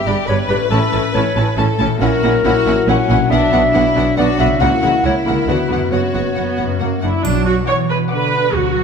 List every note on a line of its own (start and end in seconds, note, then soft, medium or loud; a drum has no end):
0.00 0.64 G2 soft
0.00 0.66 D4 soft
0.00 0.27 G4 medium
0.00 0.69 G4 soft
0.00 0.71 B4 soft
0.06 0.14 G1 soft
0.06 0.15 G2 medium
0.06 0.14 D4 soft
0.06 0.15 G4 soft
0.06 0.28 D5 medium
0.06 0.15 B5 soft
0.28 0.36 G1 medium
0.28 0.36 G2 medium
0.28 0.43 G3 soft
0.28 0.43 B3 soft
0.28 0.37 D4 soft
0.28 0.36 G4 soft
0.28 1.57 B4 medium
0.28 0.38 C#5 medium
0.28 0.36 B5 soft
0.49 0.57 G1 soft
0.49 0.58 G2 medium
0.49 1.93 A2 soft
0.49 0.58 D4 soft
0.49 0.58 G4 soft
0.49 0.56 B4 medium
0.49 0.57 B5 soft
0.57 1.86 C#4 soft
0.62 1.91 E4 soft
0.62 0.72 B4 medium
0.66 2.00 A4 soft
0.66 1.13 A4 medium
0.70 0.79 A1 medium
0.70 0.79 A2 medium
0.70 0.80 C#4 medium
0.70 0.80 E4 medium
0.70 0.78 A5 medium
0.92 1.01 A1 medium
0.92 1.01 A2 medium
0.92 1.01 C#4 soft
0.92 1.01 E4 soft
0.92 1.00 A5 soft
1.14 1.23 A1 medium
1.14 1.23 A2 medium
1.14 1.31 E3 medium
1.14 1.31 C#4 medium
1.14 1.24 C#4 soft
1.14 1.23 E4 soft
1.14 1.57 C#5 medium
1.14 1.23 A5 medium
1.36 1.44 A1 medium
1.36 1.44 A2 medium
1.36 1.44 C#4 soft
1.36 1.45 E4 soft
1.36 1.45 A5 soft
1.57 1.66 A1 medium
1.57 1.66 A2 medium
1.57 1.73 E3 soft
1.57 1.73 C#4 medium
1.57 1.65 C#4 medium
1.57 1.66 E4 medium
1.57 2.01 A4 medium
1.57 1.66 A5 soft
1.79 1.87 A1 medium
1.79 1.87 A2 medium
1.79 3.23 A#2 medium
1.79 1.88 C#4 medium
1.79 1.88 E4 soft
1.79 1.88 A5 medium
1.87 3.25 C#4 soft
1.92 3.28 E4 soft
1.97 3.25 F#4 soft
2.01 2.09 A#1 medium
2.01 2.09 A#2 medium
2.01 4.57 F#3 medium
2.01 2.09 C#4 medium
2.01 2.09 E4 medium
2.01 3.27 E4 medium
2.01 2.43 F#4 medium
2.01 2.91 A#4 medium
2.01 2.09 F#5 medium
2.23 2.31 A#1 medium
2.23 2.31 A#2 medium
2.23 2.31 C#4 medium
2.23 2.31 E4 medium
2.23 2.32 F#5 soft
2.44 2.53 A#1 medium
2.44 2.53 A#2 medium
2.44 2.52 C#4 medium
2.44 2.53 E4 medium
2.44 2.86 F#4 medium
2.44 2.53 F#5 medium
2.65 2.73 A#1 medium
2.65 2.74 A#2 medium
2.65 2.74 C#4 soft
2.65 2.74 E4 medium
2.65 2.75 F#5 soft
2.87 2.95 A#1 medium
2.87 2.96 A#2 medium
2.87 3.30 C#4 medium
2.87 2.96 C#4 medium
2.87 2.96 E4 medium
2.87 2.96 F#5 medium
2.87 3.30 F#5 medium
3.09 3.17 A#1 medium
3.09 3.17 A#2 medium
3.09 4.53 B2 medium
3.09 3.17 C#4 medium
3.09 3.17 E4 medium
3.09 3.18 F#5 medium
3.17 4.56 B3 soft
3.22 4.58 D4 soft
3.27 3.38 B1 medium
3.27 3.38 B3 medium
3.27 3.38 D4 medium
3.27 3.73 D4 medium
3.27 4.55 F#4 soft
3.27 4.15 E5 medium
3.31 3.39 B2 medium
3.31 4.58 D4 medium
3.31 3.40 F#5 medium
3.51 3.60 B1 medium
3.51 3.61 B2 medium
3.51 3.59 B3 medium
3.51 3.59 D4 medium
3.51 3.61 F#5 medium
3.73 3.82 B1 medium
3.73 3.82 B2 medium
3.73 3.82 B3 medium
3.73 3.82 D4 medium
3.73 4.16 E4 medium
3.73 3.83 F#5 medium
3.95 4.04 B1 medium
3.95 4.04 B2 medium
3.95 4.03 B3 soft
3.95 4.03 D4 soft
3.95 4.05 F#5 medium
4.17 4.25 B1 medium
4.17 4.26 B2 medium
4.17 4.26 B3 medium
4.17 4.25 D4 medium
4.17 4.59 F#4 medium
4.17 4.39 D5 medium
4.17 4.26 F#5 medium
4.39 4.47 B1 medium
4.39 4.48 B2 medium
4.39 4.47 B3 medium
4.39 4.47 D4 soft
4.39 4.62 E5 medium
4.39 4.47 F#5 medium
4.43 5.41 C#3 medium
4.48 5.43 A#3 soft
4.52 5.45 E4 soft
4.57 4.68 C#2 medium
4.57 4.68 A#3 medium
4.57 5.42 F#4 soft
4.57 5.03 F#4 medium
4.57 4.68 F#5 medium
4.61 4.69 C#3 medium
4.61 5.46 A#3 medium
4.61 4.69 E4 medium
4.61 5.47 E4 medium
4.61 5.04 F#5 medium
4.82 4.90 C#2 medium
4.82 4.91 C#3 medium
4.82 4.90 A#3 soft
4.82 4.90 E4 soft
4.82 4.90 F#5 soft
5.03 5.11 C#2 medium
5.03 5.12 C#3 soft
5.03 5.11 A#3 soft
5.03 5.12 E4 soft
5.03 5.92 E4 medium
5.03 5.15 C#5 medium
5.03 5.13 F#5 soft
5.26 5.35 C#2 medium
5.26 5.35 C#3 soft
5.26 5.34 A#3 soft
5.26 5.34 E4 soft
5.26 5.48 A#4 medium
5.26 5.36 F#5 soft
5.30 5.85 D3 soft
5.35 5.77 B3 soft
5.39 5.89 D4 soft
5.44 5.55 B3 soft
5.44 5.86 F#4 soft
5.48 5.56 D2 medium
5.48 5.56 D3 medium
5.48 6.77 B3 soft
5.48 5.56 F#4 soft
5.48 7.02 F#4 soft
5.48 5.94 B4 medium
5.48 5.58 F#5 soft
5.69 5.78 D2 soft
5.69 5.78 D3 soft
5.69 5.77 B3 soft
5.69 5.77 F#4 soft
5.69 5.80 F#5 soft
5.74 6.61 F#2 soft
5.78 6.75 B3 soft
5.83 6.70 C#4 soft
5.88 6.75 F#4 soft
5.88 5.99 F#4 soft
5.92 6.00 F#1 soft
5.92 6.00 F#2 soft
5.92 6.00 B3 soft
5.92 7.00 F#4 medium
5.92 7.02 C#5 medium
5.92 6.01 F#5 soft
6.14 6.23 F#1 soft
6.14 6.23 F#2 soft
6.14 6.22 B3 soft
6.14 6.22 F#4 soft
6.14 6.23 F#5 soft
6.35 6.45 F#1 soft
6.35 6.45 F#2 soft
6.35 6.77 B3 soft
6.35 6.43 F#5 soft
6.57 6.67 F#1 soft
6.57 6.66 F#2 soft
6.57 6.65 F#5 soft
6.63 7.17 F#2 soft
6.67 7.19 A#3 soft
6.72 7.22 C#4 soft
6.76 7.02 A#3 soft
6.76 7.67 F#4 soft
6.76 6.88 F#5 soft
6.81 6.89 F#1 soft
6.81 6.89 F#2 soft
6.81 6.89 A#3 soft
7.02 7.11 F#1 soft
7.02 7.11 F#2 soft
7.02 7.11 D4 soft
7.02 7.23 E4 medium
7.02 7.10 F#5 soft
7.24 7.59 B1 medium
7.24 8.57 B2 soft
7.24 7.65 F#3 medium
7.24 7.46 D4 medium
7.24 triangle soft
7.46 8.84 B3 soft
7.46 7.54 F#4 medium
7.68 8.11 E3 soft
7.68 8.32 F#4 soft
7.68 7.76 C#5 medium
7.68 8.00 F#5 soft
7.68 8.00 D6 medium
7.90 7.98 B4 medium
7.90 8.84 D5 soft
8.11 8.54 D3 soft
8.11 8.54 B4 medium
8.11 8.84 B4 soft
8.11 8.44 F#5 soft
8.11 8.43 D6 soft
8.33 8.84 F#4 soft
8.55 8.84 D2 medium
8.55 8.84 D3 soft
8.55 8.84 F#3 medium
8.55 8.84 F#4 medium
8.77 8.84 D4 soft